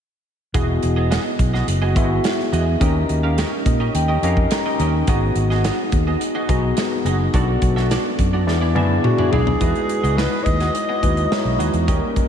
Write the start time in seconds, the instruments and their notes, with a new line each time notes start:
0.54 fingered electric bass E1, tine electric piano B3 E4 F#4 G#4 D#5, clean electric guitar B3 F#4 G#4 D#5, kick, closed hi-hat
0.68 muted clean electric guitar stroke
0.82 fingered electric bass E1, muted clean electric guitar stroke, closed hi-hat
0.96 clean electric guitar B3 F#4 G#4 D#5
1.10 clean electric guitar B3 F#4 G#4 D#5, snare, closed hi-hat
1.25 muted clean electric guitar stroke
1.39 fingered electric bass B1, muted clean electric guitar stroke, kick, closed hi-hat
1.54 clean electric guitar B3 F#4 G#4 D#5, snare
1.67 fingered electric bass F#1, muted clean electric guitar stroke, closed hi-hat
1.82 clean electric guitar B3 F#4 G#4 D#5
1.96 fingered electric bass G#1, clean electric guitar B3 F#4 G#4 D#5, tine electric piano B3 E4 F#4 G#4 E5, kick, closed hi-hat
2.10 muted clean electric guitar stroke
2.24 snare, closed hi-hat
2.39 muted clean electric guitar stroke, snare
2.52 fingered electric bass E2, clean electric guitar B3 F#4 G#4 D#5, closed hi-hat
2.67 muted clean electric guitar stroke
2.80 fingered electric bass D#2, tine electric piano C#4 D#4 G4 A#4 D#5, clean electric guitar C#4 G4 A#4 D#5, kick, closed hi-hat
2.95 muted clean electric guitar stroke
3.09 fingered electric bass D#2, muted clean electric guitar stroke, closed hi-hat
3.23 clean electric guitar C#4 G4 A#4 F5
3.38 clean electric guitar C#4 G4 A#4 D#5, snare, closed hi-hat
3.52 muted clean electric guitar stroke
3.66 fingered electric bass A#2, tine electric piano D#5, muted clean electric guitar stroke, kick, closed hi-hat
3.80 clean electric guitar C#4 G4 A#4 D#5
3.94 fingered electric bass D#2, tine electric piano G5, muted clean electric guitar stroke, closed hi-hat
4.08 clean electric guitar C#4 G4 A#4 D#5
4.22 fingered electric bass F2, clean electric guitar C#4 G4 A#4 F5, tine electric piano C#4 D#4 G4 A#4 D#5, closed hi-hat
4.37 muted clean electric guitar stroke, kick
4.51 tine electric piano A#5, muted clean electric guitar stroke, snare, closed hi-hat
4.66 clean electric guitar C#4 G4 A#4 D#5
4.79 fingered electric bass D#2, clean electric guitar C#4 G4 A#4 D#5, closed hi-hat
4.94 muted clean electric guitar stroke
5.07 fingered electric bass G#1, clean electric guitar B3 F#4 G#4 D#5, tine electric piano B3 D#4 F#4 G#4 D#5, kick, closed hi-hat
5.22 muted clean electric guitar stroke
5.35 fingered electric bass G#1, muted clean electric guitar stroke, closed hi-hat
5.50 clean electric guitar B3 F#4 G#4 D#5, snare
5.64 clean electric guitar B3 F#4 G#4 D#5, snare, closed hi-hat
5.79 muted clean electric guitar stroke
5.92 fingered electric bass D#2, muted clean electric guitar stroke, kick, closed hi-hat
6.07 clean electric guitar B3 F#4 G#4 D#5
6.21 muted clean electric guitar stroke, closed hi-hat
6.35 clean electric guitar B3 F#4 G#4 D#5
6.49 fingered electric bass B1, tine electric piano B3 D#4 F#4 G#4 D#5, clean electric guitar B3 F#4 G#4 D#5, kick, closed hi-hat
6.64 muted clean electric guitar stroke
6.77 snare, closed hi-hat
6.92 muted clean electric guitar stroke
7.05 fingered electric bass F#1, clean electric guitar B3 F#4 G#4 D#5, closed hi-hat
7.20 muted clean electric guitar stroke
7.34 fingered electric bass B1, tine electric piano B3 D4 F#4 A4 D5, clean electric guitar B3 F#4 A4 D5, kick, closed hi-hat
7.49 muted clean electric guitar stroke
7.62 fingered electric bass B1, muted clean electric guitar stroke, kick, closed hi-hat
7.76 clean electric guitar B3 F#4 A4 E5, snare
7.91 clean electric guitar B3 F#4 A4 D5, snare, closed hi-hat
8.05 muted clean electric guitar stroke
8.18 fingered electric bass F#2, muted clean electric guitar stroke, kick, closed hi-hat
8.33 clean electric guitar B3 F#4 A4 D5
8.46 fingered electric bass E2, tine electric piano B3 D4 E4 G#4 D5, muted clean electric guitar stroke, snare
8.61 clean electric guitar B3 E4 G#4 D5
8.75 fingered electric bass F#2, tine electric piano B3 D4 E4 G#4 D5, clean electric guitar B3 E4 G#4 E5, high tom
8.90 muted clean electric guitar stroke
9.04 alto saxophone F#4, muted clean electric guitar stroke, mid tom
9.18 clean electric guitar B3 E4 G#4 D5, mid tom
9.32 fingered electric bass B1, clean electric guitar B3 E4 G#4 D5, alto saxophone G#4, floor tom
9.47 muted clean electric guitar stroke, floor tom
9.60 fingered electric bass E2, tine electric piano F#3 D#4 E4 F#4 B4, clean electric guitar B3 F#4 G#4 D#5, kick, closed hi-hat
9.67 tine electric piano G#3
9.75 muted clean electric guitar stroke, closed hi-hat
9.89 muted clean electric guitar stroke, closed hi-hat
10.03 fingered electric bass C#2, clean electric guitar B3 F#4 G#4 D#5, closed hi-hat
10.17 clean electric guitar B3 F#4 G#4 D#5, alto saxophone B4, snare
10.32 muted clean electric guitar stroke
10.44 fingered electric bass D#2, alto saxophone D#5, muted clean electric guitar stroke, kick, closed hi-hat
10.60 clean electric guitar B3 F#4 G#4 D#5, snare, closed hi-hat
10.75 muted clean electric guitar stroke, closed hi-hat
10.89 clean electric guitar B3 F#4 G#4 D#5
11.02 fingered electric bass D#2, tine electric piano G#3 D#4 E4 F#4 B4, clean electric guitar B3 F#4 G#4 D#5, kick, closed hi-hat
11.17 muted clean electric guitar stroke, closed hi-hat
11.31 tine electric piano G#3 D#4 E4 F#4 C#5, snare
11.45 fingered electric bass B1, muted clean electric guitar stroke
11.59 fingered electric bass D#2, clean electric guitar B3 F#4 G#4 D#5, closed hi-hat
11.73 fingered electric bass E2, muted clean electric guitar stroke, closed hi-hat
11.88 fingered electric bass D#2, tine electric piano G3 A#3 C#4 D#4 A#4, clean electric guitar C#4 G4 A#4 D#5, kick, closed hi-hat
12.02 muted clean electric guitar stroke
12.16 muted clean electric guitar stroke, kick, closed hi-hat